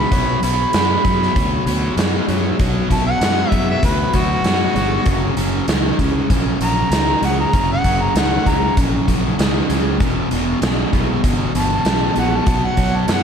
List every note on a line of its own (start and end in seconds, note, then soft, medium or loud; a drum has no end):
0.00 0.41 B5 medium
0.12 0.34 B1 medium
0.12 0.40 B2 medium
0.12 0.40 F#3 medium
0.12 kick loud
0.12 closed hi-hat medium
0.43 0.65 B1 medium
0.43 0.71 B2 medium
0.43 0.71 F#3 medium
0.43 1.64 B5 medium
0.43 closed hi-hat medium
0.73 0.96 F#2 medium
0.73 1.02 B2 medium
0.73 1.02 G#3 medium
0.73 snare loud
0.73 closed hi-hat medium
1.04 1.27 F#2 medium
1.04 1.32 B2 medium
1.04 1.32 F#3 medium
1.04 kick medium
1.04 closed hi-hat medium
1.22 snare soft
1.35 1.58 D2 medium
1.35 1.63 B2 medium
1.35 1.63 F#3 medium
1.35 kick loud
1.35 closed hi-hat medium
1.66 1.88 D2 medium
1.66 1.94 B2 medium
1.66 1.95 F#3 medium
1.66 closed hi-hat medium
1.97 2.19 F#2 medium
1.97 2.25 B2 medium
1.97 2.25 G#3 medium
1.97 snare loud
1.97 closed hi-hat medium
2.28 2.50 F#2 medium
2.28 2.56 B2 medium
2.28 2.56 F#3 medium
2.28 closed hi-hat medium
2.59 2.81 B1 medium
2.59 2.87 B2 medium
2.59 2.87 F#3 medium
2.59 kick loud
2.59 closed hi-hat medium
2.89 3.12 B1 medium
2.89 3.17 B2 medium
2.89 3.18 F#3 medium
2.89 3.06 A5 medium
2.89 kick medium
2.89 closed hi-hat medium
3.06 3.49 F#5 loud
3.21 3.43 F#2 medium
3.21 3.49 B2 medium
3.21 3.49 G#3 medium
3.21 snare loud
3.21 closed hi-hat medium
3.49 3.74 F#2 medium
3.49 3.80 B2 medium
3.49 3.80 F#3 medium
3.49 3.66 E5 loud
3.49 kick medium
3.49 closed hi-hat medium
3.70 3.83 E5 medium
3.83 4.05 D2 medium
3.83 4.11 B2 medium
3.83 4.11 F#3 medium
3.83 4.14 B4 medium
3.83 kick loud
3.83 closed hi-hat medium
4.13 4.36 D2 medium
4.13 4.42 B2 medium
4.13 4.41 F#3 medium
4.13 5.35 F#4 loud
4.13 kick medium
4.13 closed hi-hat medium
4.44 4.67 F#2 medium
4.44 4.72 B2 medium
4.44 4.73 G#3 medium
4.44 snare loud
4.44 closed hi-hat medium
4.75 4.98 G1 medium
4.75 5.03 B2 medium
4.75 5.04 F#3 medium
4.75 closed hi-hat medium
5.06 5.28 F#1 medium
5.06 5.34 F#2 medium
5.06 5.34 C#3 medium
5.06 kick loud
5.06 closed hi-hat medium
5.37 5.59 F#1 medium
5.37 5.65 F#2 medium
5.37 5.65 C#3 medium
5.37 closed hi-hat medium
5.68 5.90 C#2 medium
5.68 5.96 F#2 medium
5.68 5.97 D#3 medium
5.68 snare loud
5.68 closed hi-hat medium
5.99 6.21 C#2 medium
5.99 6.27 F#2 medium
5.99 6.27 C#3 medium
5.99 kick medium
5.99 closed hi-hat medium
6.30 6.52 A#1 medium
6.30 6.58 F#2 medium
6.30 6.58 C#3 medium
6.30 kick loud
6.30 closed hi-hat medium
6.60 6.83 A#1 medium
6.60 6.89 F#2 medium
6.60 6.89 C#3 medium
6.60 7.22 A#5 medium
6.60 closed hi-hat medium
6.90 7.13 C#2 medium
6.90 7.20 F#2 medium
6.90 7.20 D#3 loud
6.90 snare loud
6.90 closed hi-hat medium
7.22 7.44 C#2 medium
7.22 7.51 F#2 medium
7.22 7.51 C#3 medium
7.22 7.38 F#5 medium
7.22 closed hi-hat medium
7.40 7.69 A#5 medium
7.53 7.75 F#1 medium
7.53 7.82 F#2 medium
7.53 7.82 C#3 medium
7.53 kick loud
7.53 closed hi-hat medium
7.72 8.03 F#5 loud
7.84 8.07 F#1 medium
7.84 8.13 F#2 medium
7.84 8.13 C#3 medium
7.84 kick medium
7.84 closed hi-hat medium
8.02 8.19 A#5 medium
8.15 8.37 C#2 medium
8.15 8.44 F#2 medium
8.15 8.44 D#3 medium
8.15 8.50 F#5 medium
8.15 snare loud
8.15 closed hi-hat medium
8.46 8.68 C#2 medium
8.46 8.74 F#2 medium
8.46 8.74 C#3 medium
8.46 8.77 A#5 medium
8.46 kick medium
8.46 closed hi-hat medium
8.77 8.99 A#1 medium
8.77 9.05 F#2 medium
8.77 9.05 C#3 medium
8.77 kick loud
8.77 closed hi-hat medium
9.08 9.30 A#1 medium
9.08 9.36 F#2 medium
9.08 9.36 C#3 medium
9.08 kick medium
9.08 closed hi-hat medium
9.39 9.61 C#2 medium
9.39 9.67 F#2 medium
9.39 9.67 D#3 medium
9.39 snare loud
9.39 closed hi-hat medium
9.69 10.02 C#2 medium
9.69 9.97 F#2 medium
9.69 9.97 C#3 medium
9.69 closed hi-hat medium
10.00 10.22 E1 medium
10.00 10.28 E2 medium
10.00 10.28 B2 medium
10.00 kick loud
10.00 closed hi-hat medium
10.31 10.53 E1 medium
10.31 10.59 E2 medium
10.31 10.59 B2 medium
10.31 closed hi-hat medium
10.61 10.84 B1 medium
10.61 10.89 E2 medium
10.61 10.90 C#3 medium
10.61 snare loud
10.61 closed hi-hat medium
10.93 11.15 B1 medium
10.93 11.20 E2 medium
10.93 11.21 B2 medium
10.93 kick medium
10.93 closed hi-hat medium
11.23 11.46 G1 medium
11.23 11.51 E2 medium
11.23 11.51 B2 medium
11.23 kick loud
11.23 closed hi-hat medium
11.55 11.77 G1 medium
11.55 11.82 E2 medium
11.55 11.83 B2 medium
11.55 12.16 A5 medium
11.55 closed hi-hat medium
11.85 12.07 B1 medium
11.85 12.13 E2 medium
11.85 12.13 C#3 medium
11.85 snare loud
11.85 closed hi-hat medium
12.15 12.38 A#1 medium
12.15 12.43 E2 medium
12.15 12.44 B2 medium
12.15 12.37 F#5 medium
12.15 closed hi-hat medium
12.36 12.67 A5 medium
12.46 12.69 B1 medium
12.46 12.74 B2 medium
12.46 12.75 F#3 medium
12.46 kick loud
12.46 closed hi-hat medium
12.66 12.98 F#5 medium
12.77 12.99 B1 medium
12.77 13.05 B2 medium
12.77 13.06 F#3 medium
12.77 kick medium
12.77 closed hi-hat medium
12.97 13.09 A5 medium
13.08 13.23 F#2 medium
13.08 13.23 B2 medium
13.08 13.23 G#3 medium
13.08 snare loud
13.08 closed hi-hat medium
13.13 13.23 F#5 medium